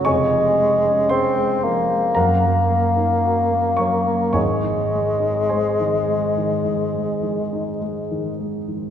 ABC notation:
X:1
M:4/4
L:1/16
Q:1/4=53
K:Abmix
V:1 name="Bassoon"
A,4 C2 B,8- B,2 | A,12- A,2 z2 |]
V:2 name="Grand piano"
[dad']4 [cc']4 [Bgb]6 [dd']2 | [dad']4 [cac']8 z4 |]
V:3 name="Grand piano" clef=bass
[F,,,F,,] F, A, D A A, F, A, G,, G, B, E G B, G, B, | [A,,,A,,] E, A, E A, E, A, E, A,, A, E, E A, E, A, E, |]